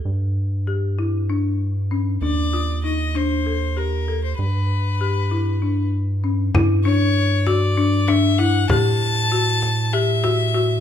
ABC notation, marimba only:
X:1
M:7/8
L:1/8
Q:1/4=97
K:Glyd
V:1 name="Marimba"
A z G E D2 C | D =F _E D A G A- | A z G E D2 C | E D2 F D D E |
G2 F2 G F F |]